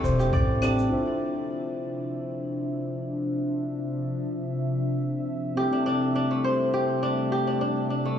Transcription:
0.00 0.33 E1 medium
0.00 1.89 A3 medium
0.00 0.61 C4 medium
0.00 0.62 D4 medium
0.00 0.19 G4 loud
0.00 0.62 G4 medium
0.00 0.62 A4 medium
0.00 1.22 C5 medium
0.00 0.60 E5 loud
0.00 0.63 G5 medium
0.05 shaker medium
0.19 1.61 G4 medium
0.19 shaker soft
0.33 0.87 A1 loud
0.33 1.44 D5 loud
0.33 kick loud
0.33 shaker soft
0.61 0.87 C4 medium
0.61 2.30 D4 medium
0.61 0.88 G4 medium
0.61 0.88 A4 medium
0.61 0.88 G5 medium
0.61 claves medium
0.61 shaker medium
0.78 shaker soft
0.89 8.19 C3 medium
0.89 5.53 F3 medium
0.89 5.53 D4 medium
0.89 5.54 F4 medium
0.89 5.54 C5 medium
0.89 8.19 E5 medium
0.93 5.55 E5 medium
5.55 8.19 G3 medium
5.55 8.19 A3 medium
5.55 8.19 C4 medium
5.55 8.19 G4 medium
5.55 6.73 G4 medium
5.55 8.19 A4 medium
5.55 8.19 E5 medium
5.73 5.86 D4 medium
5.86 6.15 D4 medium
6.15 7.02 D4 medium
6.31 8.05 A3 medium
6.44 7.63 C5 medium
6.74 7.31 G4 medium
7.03 7.47 D4 medium
7.32 8.19 G4 medium
7.47 7.61 D4 medium
7.61 7.90 D4 medium
7.90 8.19 D4 medium
8.05 8.19 A3 medium

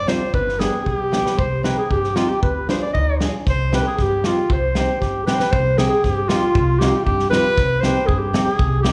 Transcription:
0.00 0.13 G2 loud
0.00 0.32 D5 medium
0.07 0.20 C4 medium
0.07 0.20 D#4 medium
0.07 0.20 F4 medium
0.07 0.34 C5 loud
0.07 snare medium
0.33 0.65 G1 loud
0.33 0.61 B4 medium
0.33 kick medium
0.49 snare soft
0.59 0.72 B3 medium
0.59 0.73 D4 medium
0.59 0.73 G4 medium
0.59 0.86 G#4 medium
0.59 0.88 G#4 medium
0.59 snare medium
0.84 1.18 B1 medium
0.84 1.24 G4 medium
0.84 1.40 G4 loud
0.84 kick medium
1.11 1.25 B3 medium
1.11 1.25 D4 medium
1.11 1.26 G4 medium
1.11 snare medium
1.25 1.36 B4 medium
1.25 snare medium
1.37 1.70 C2 medium
1.37 1.65 C5 medium
1.37 1.64 C5 medium
1.37 kick medium
1.63 1.77 C4 medium
1.63 1.77 D#4 medium
1.63 1.78 G4 medium
1.63 1.79 B4 medium
1.63 1.76 B4 medium
1.63 snare medium
1.78 1.93 G#4 medium
1.91 2.22 G2 loud
1.91 2.18 G4 medium
1.91 2.17 G4 medium
1.91 kick medium
2.04 snare soft
2.16 2.29 C4 medium
2.16 2.29 D#4 medium
2.16 2.29 F4 medium
2.16 2.31 F4 medium
2.16 2.30 G4 medium
2.16 snare medium
2.29 2.41 G4 medium
2.29 2.42 G4 medium
2.42 2.74 D2 loud
2.42 2.67 B4 medium
2.42 2.84 B4 medium
2.42 kick medium
2.69 2.82 D4 medium
2.69 2.82 F4 medium
2.69 2.82 G#4 medium
2.69 2.81 C5 medium
2.69 snare medium
2.82 2.97 D5 medium
2.82 2.93 D5 medium
2.93 3.26 D2 medium
2.93 3.21 D#4 medium
2.93 3.18 D#5 medium
2.93 kick medium
3.20 3.33 D4 medium
3.20 3.34 F4 medium
3.20 3.34 G#4 medium
3.20 snare medium
3.46 3.78 C2 loud
3.46 3.74 C5 medium
3.46 3.77 C5 loud
3.46 kick medium
3.46 snare soft
3.72 3.85 C4 medium
3.72 3.86 D#4 medium
3.72 3.86 G4 medium
3.72 3.87 B4 medium
3.72 snare medium
3.85 3.99 G#4 medium
3.85 4.04 G#4 loud
3.98 4.30 G2 medium
3.98 4.23 G4 medium
3.98 kick medium
3.98 snare soft
4.02 4.28 G4 medium
4.23 4.38 C4 medium
4.23 4.38 D#4 soft
4.23 4.53 F4 medium
4.23 4.54 F4 medium
4.23 4.38 G4 medium
4.23 snare medium
4.50 4.81 C2 medium
4.50 5.01 C5 medium
4.50 5.00 C5 medium
4.50 kick loud
4.75 4.89 C4 medium
4.75 4.89 D#4 medium
4.75 4.89 G4 medium
4.75 snare medium
5.01 5.33 G2 medium
5.01 5.25 G4 medium
5.01 5.28 G4 medium
5.01 kick medium
5.01 snare soft
5.26 5.40 C4 medium
5.26 5.40 D#4 medium
5.26 5.40 G4 medium
5.26 5.36 B4 medium
5.26 5.40 B4 medium
5.26 snare medium
5.34 5.41 C5 medium
5.40 5.53 B4 medium
5.40 snare medium
5.51 5.84 C2 loud
5.51 5.80 C5 medium
5.51 5.79 C5 medium
5.51 kick loud
5.78 5.91 C4 medium
5.78 5.92 D#4 medium
5.78 5.92 G4 medium
5.78 5.91 G#4 medium
5.78 5.89 G#4 medium
5.78 snare loud
5.89 6.06 G#4 medium
6.04 6.35 G2 loud
6.04 6.30 G4 medium
6.04 kick medium
6.04 snare soft
6.29 6.42 C4 medium
6.29 6.42 D#4 medium
6.29 6.81 F4 loud
6.29 6.78 F4 medium
6.29 6.43 G4 medium
6.29 snare loud
6.55 6.86 C2 loud
6.55 kick loud
6.79 6.94 C4 medium
6.79 6.94 D#4 medium
6.79 6.94 F4 medium
6.79 7.05 G4 medium
6.79 7.04 G4 medium
6.79 snare loud
7.05 7.37 G2 loud
7.05 7.30 G4 medium
7.05 7.33 G4 medium
7.05 kick medium
7.19 snare soft
7.30 7.44 C4 medium
7.30 7.44 D#4 medium
7.30 7.45 F4 medium
7.30 7.82 B4 loud
7.30 7.62 B4 loud
7.30 snare loud
7.58 7.88 C2 medium
7.58 kick loud
7.58 snare soft
7.62 7.71 C5 medium
7.69 8.09 B4 medium
7.81 7.95 C4 medium
7.81 7.96 D#4 medium
7.81 8.08 C5 loud
7.81 snare medium
7.85 7.97 G4 medium
8.07 8.39 G2 loud
8.07 8.20 G#4 medium
8.07 kick medium
8.18 8.43 G4 medium
8.18 8.47 G4 medium
8.33 8.46 C4 medium
8.33 8.47 D#4 medium
8.33 8.47 G4 medium
8.33 snare loud
8.44 8.80 G#4 medium
8.44 8.83 G#4 loud
8.59 8.89 C2 loud
8.59 kick loud
8.82 8.92 C4 medium
8.82 8.92 D#4 medium
8.82 8.92 G4 loud
8.82 8.92 G4 medium
8.82 snare loud
8.87 8.92 G4 medium

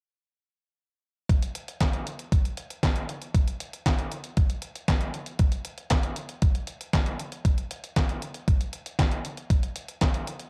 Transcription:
1.29 kick medium
1.29 closed hi-hat medium
1.42 closed hi-hat medium
1.55 closed hi-hat medium
1.68 closed hi-hat soft
1.80 kick loud
1.80 snare loud
1.80 clap medium
1.80 closed hi-hat medium
1.93 closed hi-hat soft
2.07 closed hi-hat medium
2.19 closed hi-hat soft
2.32 kick loud
2.32 closed hi-hat medium
2.45 closed hi-hat soft
2.57 closed hi-hat medium
2.70 closed hi-hat medium
2.83 kick loud
2.83 snare loud
2.83 clap medium
2.83 closed hi-hat medium
2.96 closed hi-hat soft
3.09 closed hi-hat medium
3.22 closed hi-hat soft
3.34 kick medium
3.34 closed hi-hat medium
3.47 closed hi-hat medium
3.60 closed hi-hat medium
3.73 closed hi-hat soft
3.86 kick loud
3.86 snare loud
3.86 clap medium
3.86 closed hi-hat medium
3.98 closed hi-hat soft
4.11 closed hi-hat medium
4.24 closed hi-hat soft
4.37 kick loud
4.37 closed hi-hat medium
4.50 closed hi-hat medium
4.62 closed hi-hat medium
4.75 closed hi-hat soft
4.88 kick loud
4.88 snare loud
4.88 clap medium
4.88 closed hi-hat medium
5.01 closed hi-hat soft
5.14 closed hi-hat medium
5.26 closed hi-hat soft
5.39 kick loud
5.39 closed hi-hat medium
5.52 closed hi-hat medium
5.65 closed hi-hat medium
5.78 closed hi-hat soft
5.90 kick loud
5.90 snare loud
5.90 clap medium
5.90 closed hi-hat medium
6.03 closed hi-hat soft
6.16 closed hi-hat medium
6.29 closed hi-hat medium
6.42 kick loud
6.42 closed hi-hat medium
6.55 closed hi-hat soft
6.67 closed hi-hat medium
6.81 closed hi-hat medium
6.93 kick loud
6.93 snare loud
6.93 clap medium
6.93 closed hi-hat medium
7.06 closed hi-hat soft
7.20 closed hi-hat medium
7.32 closed hi-hat soft
7.45 kick medium
7.45 closed hi-hat medium
7.58 closed hi-hat soft
7.71 closed hi-hat medium
7.84 closed hi-hat soft
7.96 kick loud
7.96 snare loud
7.96 clap medium
7.96 closed hi-hat medium
8.09 closed hi-hat soft
8.22 closed hi-hat medium
8.34 closed hi-hat medium
8.48 kick loud
8.48 closed hi-hat medium
8.61 closed hi-hat soft
8.73 closed hi-hat medium
8.86 closed hi-hat medium
8.99 kick loud
8.99 snare loud
8.99 clap medium
8.99 closed hi-hat medium
9.12 closed hi-hat soft
9.25 closed hi-hat medium
9.37 closed hi-hat soft
9.50 kick medium
9.50 closed hi-hat medium
9.63 closed hi-hat medium
9.76 closed hi-hat medium
9.88 closed hi-hat medium
10.01 kick loud
10.01 snare loud
10.01 clap medium
10.01 closed hi-hat medium
10.14 closed hi-hat soft
10.27 closed hi-hat medium
10.39 closed hi-hat soft

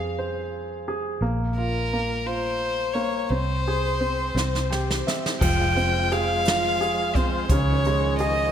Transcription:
0.00 1.17 F2 medium
0.00 1.18 F3 medium
0.00 0.83 C4 soft
0.00 0.87 G#4 soft
0.19 1.19 C5 soft
0.88 1.21 G#4 soft
1.21 3.26 A#1 medium
1.21 1.92 A#3 medium
1.57 2.25 F4 soft
1.57 2.28 A#4 medium
1.93 2.93 A#3 soft
2.26 3.27 F4 soft
2.26 2.95 C5 medium
2.94 3.29 A#3 soft
2.94 3.31 C#5 medium
3.30 4.31 C2 medium
3.30 3.99 C4 medium
3.30 5.05 C5 medium
3.68 4.34 G#4 soft
4.01 4.34 C4 soft
4.35 5.01 C2 medium
4.35 5.05 C4 medium
4.35 snare soft
4.55 snare soft
4.70 5.39 G4 soft
4.70 5.03 G5 soft
4.70 snare medium
4.91 snare medium
5.07 5.40 C4 soft
5.07 5.39 E5 medium
5.07 snare medium
5.26 snare medium
5.41 7.45 F1 medium
5.41 7.47 F3 medium
5.41 7.45 F3 medium
5.41 7.47 G#3 medium
5.41 7.47 F4 medium
5.41 6.13 G5 medium
5.41 kick loud
5.41 crash medium
5.77 7.11 C4 medium
5.77 closed hi-hat soft
6.12 6.79 G#4 medium
6.12 7.17 F5 loud
6.12 closed hi-hat medium
6.45 7.46 F4 medium
6.45 snare loud
6.45 closed hi-hat medium
6.81 7.47 G#4 medium
6.81 closed hi-hat soft
7.15 7.49 C4 medium
7.15 7.52 C5 medium
7.15 kick medium
7.15 closed hi-hat soft
7.49 8.52 C#2 loud
7.49 8.52 C#3 medium
7.49 8.52 D#3 medium
7.49 8.52 F3 medium
7.49 8.52 C#4 medium
7.49 8.18 C#5 medium
7.49 kick loud
7.49 closed hi-hat medium
7.85 8.52 G#3 medium
7.85 closed hi-hat soft
8.18 8.52 G#4 medium
8.18 8.52 D#5 loud
8.18 closed hi-hat medium

